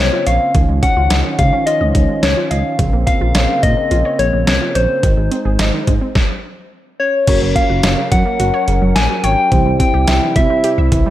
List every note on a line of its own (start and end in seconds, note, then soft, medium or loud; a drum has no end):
0.00 0.10 C2 medium
0.00 0.52 C#3 medium
0.00 0.51 A#3 medium
0.00 0.12 C4 medium
0.00 0.52 C4 medium
0.00 0.28 C#5 medium
0.13 0.26 F4 medium
0.27 0.38 A#1 medium
0.27 0.40 C#5 medium
0.27 0.55 F5 medium
0.27 closed hi-hat medium
0.55 0.66 C#2 loud
0.55 0.68 D#3 medium
0.55 2.77 D#3 medium
0.55 2.77 F3 medium
0.55 2.77 C#4 medium
0.55 kick loud
0.55 closed hi-hat medium
0.69 0.81 C#2 loud
0.69 0.82 G#3 medium
0.83 0.96 C#4 medium
0.83 1.35 F#5 loud
0.83 kick medium
0.83 closed hi-hat medium
0.97 1.09 C#2 medium
0.97 1.10 F4 medium
1.10 1.23 C#2 loud
1.10 1.24 D#5 medium
1.10 snare loud
1.10 closed hi-hat medium
1.25 1.38 D#3 medium
1.39 1.51 C#3 medium
1.39 1.52 G#3 medium
1.39 1.68 F5 loud
1.39 kick medium
1.39 closed hi-hat medium
1.53 1.66 C#4 medium
1.66 1.80 F4 medium
1.66 2.24 D#5 loud
1.66 closed hi-hat medium
1.81 1.93 C#2 medium
1.81 1.94 D#5 medium
1.95 2.07 C#2 loud
1.95 2.08 D#3 medium
1.95 kick medium
1.95 closed hi-hat medium
2.09 2.22 G#3 medium
2.23 2.35 C#2 loud
2.23 2.36 C#4 medium
2.23 2.52 C#5 medium
2.23 snare loud
2.23 closed hi-hat medium
2.37 2.50 F4 medium
2.51 2.63 C#2 loud
2.51 2.64 D#5 medium
2.51 2.79 F5 medium
2.51 closed hi-hat medium
2.79 2.91 A#1 loud
2.79 5.01 C#3 medium
2.79 2.92 C#3 medium
2.79 5.01 A#3 medium
2.79 5.01 C4 medium
2.79 kick loud
2.79 closed hi-hat medium
2.93 3.05 A#1 loud
2.93 3.06 A#3 medium
3.07 3.20 C4 medium
3.07 3.64 F5 loud
3.07 kick medium
3.07 closed hi-hat medium
3.21 3.33 A#1 medium
3.21 3.34 F4 medium
3.35 3.47 A#1 loud
3.35 3.48 C#5 medium
3.35 snare loud
3.35 closed hi-hat medium
3.49 3.62 C#3 medium
3.63 3.75 A#2 loud
3.63 3.76 A#3 medium
3.63 4.21 D#5 loud
3.63 kick medium
3.63 closed hi-hat medium
3.77 3.90 C4 medium
3.91 4.03 A#1 loud
3.91 4.04 F4 medium
3.91 closed hi-hat medium
4.05 4.18 C#5 medium
4.19 4.31 A#1 loud
4.19 4.32 C#3 medium
4.19 4.47 C#5 medium
4.19 closed hi-hat medium
4.33 4.45 A#1 loud
4.33 4.46 A#3 medium
4.47 4.59 C2 medium
4.47 4.60 C4 medium
4.47 4.77 C#5 medium
4.47 snare loud
4.47 closed hi-hat medium
4.61 4.74 F4 medium
4.75 4.87 A#1 medium
4.75 6.71 C5 medium
4.75 4.88 C#5 medium
4.75 closed hi-hat medium
5.03 5.15 G#1 loud
5.03 5.16 D#3 medium
5.03 6.14 G#3 medium
5.03 6.14 D#4 medium
5.03 6.14 C5 medium
5.03 kick loud
5.03 closed hi-hat medium
5.17 5.29 G#1 loud
5.17 5.30 G#3 medium
5.31 5.44 C4 medium
5.31 closed hi-hat medium
5.45 5.57 G#1 medium
5.45 5.58 G#4 medium
5.59 5.71 G#1 loud
5.59 5.72 D#5 medium
5.59 snare loud
5.59 closed hi-hat medium
5.73 5.86 D#3 medium
5.87 5.99 G#2 loud
5.87 6.00 G#3 medium
5.87 kick medium
5.87 closed hi-hat medium
6.01 6.15 C4 medium
6.15 kick loud
6.15 snare medium
7.00 7.52 C#5 medium
7.27 7.39 F#1 loud
7.27 7.41 C#3 medium
7.27 9.50 F#3 medium
7.27 9.50 C#4 medium
7.27 9.48 C#4 medium
7.27 9.48 F#4 medium
7.27 9.50 A#4 medium
7.27 9.48 A#4 medium
7.27 9.48 C#5 medium
7.27 kick loud
7.27 closed hi-hat medium
7.27 crash medium
7.42 7.53 F#1 loud
7.42 7.55 F#3 medium
7.55 7.69 A#3 medium
7.55 8.08 F5 loud
7.55 kick medium
7.55 closed hi-hat medium
7.69 7.82 F#1 medium
7.69 7.83 F#4 medium
7.83 7.96 F#1 loud
7.83 7.97 C#5 medium
7.83 snare loud
7.83 closed hi-hat medium
7.98 8.11 C#3 medium
8.11 8.24 F#2 loud
8.11 8.25 F#3 medium
8.11 8.97 F#5 loud
8.11 kick medium
8.11 closed hi-hat medium
8.26 8.39 A#3 medium
8.40 8.52 F#1 loud
8.40 8.53 F#4 loud
8.40 closed hi-hat medium
8.54 8.67 C#5 medium
8.68 8.80 F#1 loud
8.68 8.81 C#3 medium
8.68 closed hi-hat medium
8.82 8.94 F#1 loud
8.82 8.95 F#3 medium
8.96 9.08 A#1 medium
8.96 9.09 A#3 medium
8.96 9.25 G#5 loud
8.96 snare loud
8.96 closed hi-hat medium
9.10 9.23 F#4 medium
9.24 9.36 G#1 loud
9.24 9.37 C#5 medium
9.24 9.79 G5 loud
9.24 closed hi-hat medium
9.52 9.64 C2 loud
9.52 11.10 C3 medium
9.52 9.65 E3 medium
9.52 11.10 G3 medium
9.52 11.10 C4 medium
9.52 11.10 E4 medium
9.52 11.10 G4 medium
9.52 11.10 C5 medium
9.52 kick loud
9.52 closed hi-hat medium
9.66 9.78 C2 medium
9.66 9.79 G3 medium
9.80 9.93 C4 medium
9.80 10.37 G5 loud
9.80 kick medium
9.80 closed hi-hat medium
9.94 10.06 C2 loud
9.94 10.07 G4 medium
10.07 10.20 C2 loud
10.07 10.21 E5 medium
10.07 snare loud
10.07 closed hi-hat medium
10.22 10.35 E3 medium
10.36 10.48 C3 loud
10.36 10.49 G3 medium
10.36 11.10 E5 medium
10.36 kick medium
10.36 closed hi-hat medium
10.50 10.63 C4 medium
10.64 10.77 G4 medium
10.64 closed hi-hat medium
10.78 10.90 C2 medium
10.78 10.91 E5 medium
10.92 11.04 C2 loud
10.92 11.05 E3 medium
10.92 kick medium
10.92 closed hi-hat medium
11.06 11.10 G3 medium